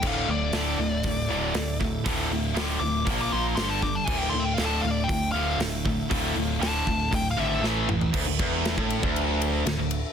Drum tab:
CC |x---------------|----------------|x---------------|----------------|
RD |----------------|----------------|----------------|----------------|
HH |----o---o---o---|o---o---o---o---|----o---o---o---|o---o---o-------|
SD |----o-------o-o-|----o-------o-o-|----o-------o---|----o-------o---|
T2 |----------------|----------------|----------------|--------------o-|
FT |----------------|----------------|----------------|---------------o|
BD |o-------o-----o-|o-------o-----o-|o-------o-----o-|o-----o-o-------|

CC |x---------------|
RD |--x-x-x-x-x-x-x-|
HH |----------------|
SD |----o-------o---|
T2 |----------------|
FT |----------------|
BD |o-o--o-o--------|